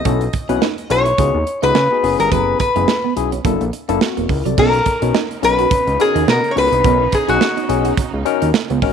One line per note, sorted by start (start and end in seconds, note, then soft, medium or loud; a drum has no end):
0.00 0.91 D#5 medium
0.05 0.29 B1 loud
0.05 0.15 B3 medium
0.05 0.24 C#4 medium
0.05 0.24 E4 medium
0.05 0.24 F#4 medium
0.05 0.24 A4 medium
0.05 kick loud
0.05 closed hi-hat medium
0.21 closed hi-hat soft
0.33 muted clean electric guitar stroke soft
0.33 kick medium
0.33 closed hi-hat medium
0.49 0.59 B1 loud
0.49 0.65 C#4 medium
0.49 0.57 C#4 medium
0.49 0.65 E4 medium
0.49 0.65 F#4 medium
0.49 0.65 B4 medium
0.49 closed hi-hat soft
0.62 0.71 D#4 medium
0.62 snare loud
0.78 closed hi-hat soft
0.90 1.13 B1 medium
0.90 1.03 C#4 medium
0.90 1.03 E4 medium
0.90 1.03 F#4 medium
0.90 1.03 A4 medium
0.90 1.63 C#5 loud
0.90 muted clean electric guitar stroke soft
0.90 closed hi-hat medium
1.05 1.13 E4 medium
1.05 closed hi-hat soft
1.18 1.31 C#2 loud
1.18 1.37 B3 medium
1.18 1.28 C#4 medium
1.18 1.37 D#4 medium
1.18 1.37 F#4 medium
1.18 1.37 G#4 medium
1.18 kick loud
1.18 closed hi-hat loud
1.34 1.45 D#2 loud
1.47 muted clean electric guitar stroke soft
1.47 closed hi-hat medium
1.62 1.73 C#2 medium
1.62 1.73 B3 medium
1.62 1.70 D#4 medium
1.62 1.73 D#4 medium
1.62 1.73 F#4 medium
1.62 1.73 G#4 medium
1.62 2.19 B4 loud
1.62 closed hi-hat medium
1.75 1.88 C#3 loud
1.75 1.84 C#4 medium
1.75 snare loud
1.91 2.02 B3 medium
1.91 2.03 D#4 medium
1.91 2.03 F#4 medium
1.91 2.03 G#4 medium
2.03 2.16 F#1 loud
2.03 2.60 B3 medium
2.03 2.60 C#4 medium
2.03 2.60 E4 medium
2.03 2.60 G#4 medium
2.03 muted clean electric guitar stroke soft
2.03 open hi-hat medium
2.19 2.30 G1 medium
2.19 2.27 C#4 medium
2.19 2.32 A#4 medium
2.19 closed hi-hat medium
2.31 2.55 F#1 loud
2.31 2.41 F#3 medium
2.31 2.59 B4 medium
2.31 kick loud
2.31 closed hi-hat medium
2.60 3.13 B4 medium
2.60 muted clean electric guitar stroke soft
2.60 kick medium
2.60 closed hi-hat medium
2.76 2.86 F#1 loud
2.76 2.83 G#3 medium
2.76 2.91 B3 medium
2.76 2.92 C#4 medium
2.76 2.92 E4 medium
2.76 2.92 G#4 medium
2.76 closed hi-hat soft
2.88 snare loud
3.04 3.12 B3 medium
3.16 3.40 B1 medium
3.16 3.29 B3 medium
3.16 3.29 C#4 medium
3.16 3.29 E4 medium
3.16 3.30 G#4 medium
3.16 muted clean electric guitar stroke soft
3.16 closed hi-hat medium
3.32 3.40 C#4 medium
3.32 closed hi-hat soft
3.45 3.58 F#1 loud
3.45 3.63 A#3 medium
3.45 3.55 A#3 medium
3.45 3.63 D4 medium
3.45 3.64 E4 medium
3.45 3.64 A4 medium
3.45 kick loud
3.45 closed hi-hat medium
3.61 3.71 A#1 medium
3.61 closed hi-hat soft
3.73 muted clean electric guitar stroke soft
3.73 closed hi-hat medium
3.89 3.99 F#1 loud
3.89 3.99 A#3 medium
3.89 3.99 D4 medium
3.89 3.97 D4 medium
3.89 3.99 E4 medium
3.89 3.99 A4 loud
3.89 closed hi-hat soft
4.01 4.29 C4 medium
4.01 4.28 F#4 medium
4.01 snare loud
4.17 4.28 E1 medium
4.17 4.25 A#3 medium
4.17 closed hi-hat soft
4.29 4.43 C#2 medium
4.29 4.45 E4 medium
4.29 4.45 A#4 medium
4.29 muted clean electric guitar stroke soft
4.29 kick medium
4.29 open hi-hat medium
4.45 4.56 C2 medium
4.45 4.53 F#3 medium
4.45 4.73 A4 soft
4.45 4.73 D5 medium
4.45 closed hi-hat soft
4.58 4.81 B1 loud
4.58 8.93 C#3 medium
4.58 8.93 B3 medium
4.58 4.68 B3 medium
4.58 4.76 C#4 medium
4.58 8.93 C#4 medium
4.58 8.93 D#4 medium
4.58 4.76 D#4 medium
4.58 4.77 F#4 medium
4.58 4.77 A#4 medium
4.58 5.39 A#4 medium
4.58 kick loud
4.58 crash loud
4.73 closed hi-hat soft
4.86 muted clean electric guitar stroke medium
4.86 kick medium
4.86 closed hi-hat medium
5.02 5.12 B1 loud
5.02 5.18 C#4 medium
5.02 5.10 C#4 medium
5.02 5.18 D#4 medium
5.02 5.18 F#4 medium
5.02 5.18 A#4 medium
5.02 closed hi-hat soft
5.15 5.25 D#4 medium
5.15 snare loud
5.31 closed hi-hat soft
5.42 5.66 B1 medium
5.42 5.66 C#4 medium
5.42 5.66 D#4 medium
5.42 5.66 F#4 medium
5.42 5.67 A#4 medium
5.42 6.02 B4 loud
5.42 muted clean electric guitar stroke soft
5.42 closed hi-hat medium
5.59 5.66 F#4 medium
5.59 closed hi-hat soft
5.71 5.81 C#4 medium
5.71 kick loud
5.71 closed hi-hat medium
5.87 5.97 C#2 medium
5.87 closed hi-hat soft
5.99 6.23 C#4 medium
5.99 6.23 D#4 medium
5.99 6.23 F#4 medium
5.99 6.29 G#4 loud
5.99 6.23 A#4 medium
5.99 muted clean electric guitar stroke soft
5.99 closed hi-hat medium
6.15 6.26 D#2 medium
6.15 6.23 D#4 medium
6.15 closed hi-hat medium
6.28 6.41 B2 loud
6.28 6.38 C#4 medium
6.28 6.51 A#4 medium
6.28 snare loud
6.44 closed hi-hat soft
6.51 6.57 C#5 medium
6.56 6.69 C#2 medium
6.56 6.69 C#4 medium
6.56 6.69 D#4 medium
6.56 6.69 F#4 medium
6.56 6.69 A#4 medium
6.56 7.15 B4 loud
6.56 muted clean electric guitar stroke soft
6.56 open hi-hat medium
6.72 6.82 C2 medium
6.72 6.79 C#4 medium
6.72 closed hi-hat soft
6.84 7.08 B1 loud
6.84 6.94 B3 loud
6.84 7.03 C#4 medium
6.84 7.03 D#4 medium
6.84 7.03 F#4 medium
6.84 7.03 A#4 medium
6.84 kick loud
6.84 closed hi-hat medium
7.12 7.30 G#4 medium
7.12 muted clean electric guitar stroke soft
7.12 kick medium
7.12 closed hi-hat medium
7.28 7.39 B1 loud
7.28 7.44 C#4 medium
7.28 7.36 C#4 medium
7.28 7.44 D#4 medium
7.28 7.44 F#4 medium
7.28 8.14 F#4 medium
7.28 7.44 G#4 medium
7.28 closed hi-hat medium
7.41 snare loud
7.57 7.64 D#4 medium
7.57 closed hi-hat soft
7.69 7.93 B1 medium
7.69 7.93 C#4 medium
7.69 7.93 D#4 medium
7.69 7.93 F#4 medium
7.69 7.93 G#4 medium
7.69 muted clean electric guitar stroke soft
7.69 closed hi-hat medium
7.85 7.93 F#4 medium
7.85 closed hi-hat soft
7.97 8.07 C#4 medium
7.97 kick loud
7.97 closed hi-hat medium
8.14 8.24 C#2 medium
8.25 8.49 C#4 medium
8.25 8.49 D#4 medium
8.25 8.49 F#4 medium
8.25 8.49 A#4 loud
8.25 muted clean electric guitar stroke soft
8.25 closed hi-hat medium
8.42 8.52 D#2 medium
8.42 8.49 D#4 medium
8.42 closed hi-hat medium
8.54 snare loud
8.70 8.80 C#2 medium
8.70 8.78 B3 medium
8.70 closed hi-hat soft
8.82 8.93 G#1 medium
8.82 8.93 C#4 medium
8.82 8.93 D#4 medium
8.82 8.93 F#4 medium
8.82 8.93 A#4 medium
8.82 muted clean electric guitar stroke soft
8.82 kick medium
8.82 open hi-hat medium